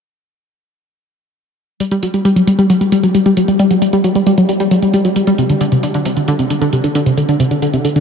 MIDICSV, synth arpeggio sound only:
0, 0, Header, 1, 2, 480
1, 0, Start_track
1, 0, Tempo, 447761
1, 1934, Time_signature, 4, 2, 24, 8
1, 8578, End_track
2, 0, Start_track
2, 0, Title_t, "Synth arpeggio sound"
2, 0, Program_c, 0, 84
2, 1934, Note_on_c, 0, 55, 81
2, 1981, Note_off_c, 0, 55, 0
2, 2054, Note_on_c, 0, 55, 95
2, 2125, Note_off_c, 0, 55, 0
2, 2174, Note_on_c, 0, 54, 71
2, 2221, Note_off_c, 0, 54, 0
2, 2294, Note_on_c, 0, 55, 74
2, 2341, Note_off_c, 0, 55, 0
2, 2413, Note_on_c, 0, 55, 100
2, 2484, Note_off_c, 0, 55, 0
2, 2534, Note_on_c, 0, 54, 72
2, 2581, Note_off_c, 0, 54, 0
2, 2654, Note_on_c, 0, 55, 74
2, 2701, Note_off_c, 0, 55, 0
2, 2773, Note_on_c, 0, 55, 94
2, 2844, Note_off_c, 0, 55, 0
2, 2894, Note_on_c, 0, 54, 83
2, 2941, Note_off_c, 0, 54, 0
2, 3014, Note_on_c, 0, 55, 75
2, 3061, Note_off_c, 0, 55, 0
2, 3135, Note_on_c, 0, 55, 100
2, 3205, Note_off_c, 0, 55, 0
2, 3254, Note_on_c, 0, 54, 72
2, 3301, Note_off_c, 0, 54, 0
2, 3375, Note_on_c, 0, 55, 78
2, 3422, Note_off_c, 0, 55, 0
2, 3495, Note_on_c, 0, 55, 100
2, 3565, Note_off_c, 0, 55, 0
2, 3615, Note_on_c, 0, 54, 75
2, 3662, Note_off_c, 0, 54, 0
2, 3735, Note_on_c, 0, 55, 73
2, 3782, Note_off_c, 0, 55, 0
2, 3855, Note_on_c, 0, 55, 94
2, 3925, Note_off_c, 0, 55, 0
2, 3975, Note_on_c, 0, 54, 70
2, 4022, Note_off_c, 0, 54, 0
2, 4096, Note_on_c, 0, 55, 72
2, 4142, Note_off_c, 0, 55, 0
2, 4215, Note_on_c, 0, 55, 98
2, 4285, Note_off_c, 0, 55, 0
2, 4335, Note_on_c, 0, 54, 80
2, 4382, Note_off_c, 0, 54, 0
2, 4455, Note_on_c, 0, 55, 71
2, 4502, Note_off_c, 0, 55, 0
2, 4575, Note_on_c, 0, 55, 99
2, 4645, Note_off_c, 0, 55, 0
2, 4696, Note_on_c, 0, 54, 73
2, 4742, Note_off_c, 0, 54, 0
2, 4815, Note_on_c, 0, 55, 83
2, 4862, Note_off_c, 0, 55, 0
2, 4935, Note_on_c, 0, 55, 99
2, 5005, Note_off_c, 0, 55, 0
2, 5054, Note_on_c, 0, 54, 74
2, 5101, Note_off_c, 0, 54, 0
2, 5175, Note_on_c, 0, 55, 72
2, 5222, Note_off_c, 0, 55, 0
2, 5294, Note_on_c, 0, 55, 97
2, 5365, Note_off_c, 0, 55, 0
2, 5415, Note_on_c, 0, 54, 75
2, 5462, Note_off_c, 0, 54, 0
2, 5535, Note_on_c, 0, 55, 73
2, 5582, Note_off_c, 0, 55, 0
2, 5655, Note_on_c, 0, 55, 98
2, 5725, Note_off_c, 0, 55, 0
2, 5775, Note_on_c, 0, 48, 80
2, 5822, Note_off_c, 0, 48, 0
2, 5895, Note_on_c, 0, 50, 73
2, 5942, Note_off_c, 0, 50, 0
2, 6014, Note_on_c, 0, 50, 96
2, 6085, Note_off_c, 0, 50, 0
2, 6134, Note_on_c, 0, 48, 72
2, 6181, Note_off_c, 0, 48, 0
2, 6254, Note_on_c, 0, 50, 83
2, 6301, Note_off_c, 0, 50, 0
2, 6375, Note_on_c, 0, 50, 92
2, 6445, Note_off_c, 0, 50, 0
2, 6495, Note_on_c, 0, 48, 76
2, 6542, Note_off_c, 0, 48, 0
2, 6614, Note_on_c, 0, 50, 73
2, 6661, Note_off_c, 0, 50, 0
2, 6734, Note_on_c, 0, 50, 104
2, 6805, Note_off_c, 0, 50, 0
2, 6853, Note_on_c, 0, 48, 73
2, 6901, Note_off_c, 0, 48, 0
2, 6974, Note_on_c, 0, 50, 74
2, 7021, Note_off_c, 0, 50, 0
2, 7093, Note_on_c, 0, 50, 99
2, 7164, Note_off_c, 0, 50, 0
2, 7214, Note_on_c, 0, 48, 78
2, 7261, Note_off_c, 0, 48, 0
2, 7333, Note_on_c, 0, 50, 73
2, 7381, Note_off_c, 0, 50, 0
2, 7453, Note_on_c, 0, 50, 101
2, 7524, Note_off_c, 0, 50, 0
2, 7572, Note_on_c, 0, 48, 74
2, 7620, Note_off_c, 0, 48, 0
2, 7692, Note_on_c, 0, 50, 80
2, 7740, Note_off_c, 0, 50, 0
2, 7812, Note_on_c, 0, 50, 97
2, 7884, Note_off_c, 0, 50, 0
2, 7932, Note_on_c, 0, 48, 74
2, 7980, Note_off_c, 0, 48, 0
2, 8052, Note_on_c, 0, 50, 73
2, 8100, Note_off_c, 0, 50, 0
2, 8172, Note_on_c, 0, 50, 96
2, 8244, Note_off_c, 0, 50, 0
2, 8292, Note_on_c, 0, 48, 73
2, 8340, Note_off_c, 0, 48, 0
2, 8412, Note_on_c, 0, 50, 75
2, 8460, Note_off_c, 0, 50, 0
2, 8532, Note_on_c, 0, 50, 95
2, 8578, Note_off_c, 0, 50, 0
2, 8578, End_track
0, 0, End_of_file